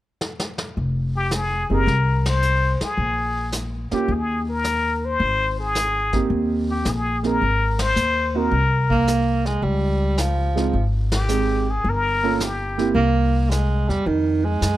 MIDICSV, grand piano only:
0, 0, Header, 1, 2, 480
1, 0, Start_track
1, 0, Key_signature, -4, "minor"
1, 0, Tempo, 554529
1, 659, Time_signature, 4, 2, 24, 8
1, 12785, End_track
2, 0, Start_track
2, 0, Title_t, "Grand piano"
2, 0, Program_c, 0, 0
2, 1471, Note_on_c, 0, 60, 62
2, 1476, Note_on_c, 0, 63, 50
2, 1482, Note_on_c, 0, 68, 65
2, 1483, Note_on_c, 0, 67, 55
2, 1605, Note_off_c, 0, 60, 0
2, 1607, Note_off_c, 0, 63, 0
2, 1611, Note_off_c, 0, 67, 0
2, 1611, Note_off_c, 0, 68, 0
2, 3389, Note_on_c, 0, 58, 60
2, 3392, Note_on_c, 0, 61, 48
2, 3393, Note_on_c, 0, 65, 48
2, 3400, Note_on_c, 0, 67, 68
2, 3524, Note_off_c, 0, 58, 0
2, 3526, Note_off_c, 0, 61, 0
2, 3526, Note_off_c, 0, 65, 0
2, 3530, Note_off_c, 0, 67, 0
2, 5303, Note_on_c, 0, 58, 56
2, 5306, Note_on_c, 0, 60, 57
2, 5311, Note_on_c, 0, 63, 55
2, 5315, Note_on_c, 0, 67, 67
2, 5906, Note_off_c, 0, 58, 0
2, 5907, Note_off_c, 0, 60, 0
2, 5910, Note_off_c, 0, 63, 0
2, 5911, Note_off_c, 0, 67, 0
2, 6259, Note_on_c, 0, 58, 53
2, 6264, Note_on_c, 0, 60, 55
2, 6272, Note_on_c, 0, 63, 48
2, 6273, Note_on_c, 0, 68, 62
2, 6399, Note_off_c, 0, 58, 0
2, 6401, Note_off_c, 0, 60, 0
2, 6405, Note_off_c, 0, 63, 0
2, 6405, Note_off_c, 0, 68, 0
2, 7223, Note_on_c, 0, 58, 57
2, 7226, Note_on_c, 0, 60, 57
2, 7228, Note_on_c, 0, 63, 54
2, 7232, Note_on_c, 0, 66, 65
2, 7360, Note_off_c, 0, 58, 0
2, 7361, Note_off_c, 0, 60, 0
2, 7363, Note_off_c, 0, 63, 0
2, 7365, Note_off_c, 0, 66, 0
2, 9137, Note_on_c, 0, 56, 57
2, 9140, Note_on_c, 0, 60, 48
2, 9145, Note_on_c, 0, 63, 48
2, 9149, Note_on_c, 0, 65, 54
2, 9276, Note_off_c, 0, 56, 0
2, 9278, Note_off_c, 0, 60, 0
2, 9280, Note_off_c, 0, 63, 0
2, 9282, Note_off_c, 0, 65, 0
2, 9770, Note_on_c, 0, 56, 52
2, 9772, Note_on_c, 0, 60, 53
2, 9774, Note_on_c, 0, 63, 45
2, 9780, Note_on_c, 0, 68, 57
2, 10071, Note_off_c, 0, 56, 0
2, 10072, Note_off_c, 0, 60, 0
2, 10073, Note_off_c, 0, 63, 0
2, 10076, Note_off_c, 0, 68, 0
2, 10587, Note_on_c, 0, 58, 65
2, 10593, Note_on_c, 0, 61, 59
2, 10595, Note_on_c, 0, 65, 58
2, 10597, Note_on_c, 0, 69, 72
2, 10720, Note_off_c, 0, 58, 0
2, 10724, Note_off_c, 0, 61, 0
2, 10724, Note_off_c, 0, 65, 0
2, 10725, Note_off_c, 0, 69, 0
2, 11060, Note_on_c, 0, 58, 64
2, 11065, Note_on_c, 0, 60, 64
2, 11065, Note_on_c, 0, 64, 56
2, 11074, Note_on_c, 0, 67, 71
2, 11197, Note_off_c, 0, 58, 0
2, 11199, Note_off_c, 0, 60, 0
2, 11200, Note_off_c, 0, 64, 0
2, 11204, Note_off_c, 0, 67, 0
2, 12785, End_track
0, 0, End_of_file